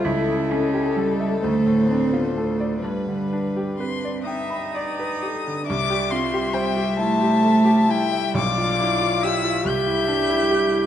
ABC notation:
X:1
M:6/8
L:1/16
Q:3/8=44
K:C
V:1 name="Violin"
A6 c6 | B4 c'2 _e'6 | d'2 c'2 g2 a4 g2 | d'4 e'2 g'6 |]
V:2 name="Violin"
A12 | B6 e2 d2 A2 | e12 | f6 e6 |]
V:3 name="Grand piano"
^C,, ^C, E G A e D,, A,, D F A d | G,, D, D G B d g b d B G D, | C,, G F G c G E G A G E e | B,,, F E F G F C,, E D E G E |]
V:4 name="Cello"
E2 ^C2 G,2 A,2 =C B, A,2 | G,4 C2 _E6 | D2 C2 G,2 A,4 G,2 | D4 E2 G6 |]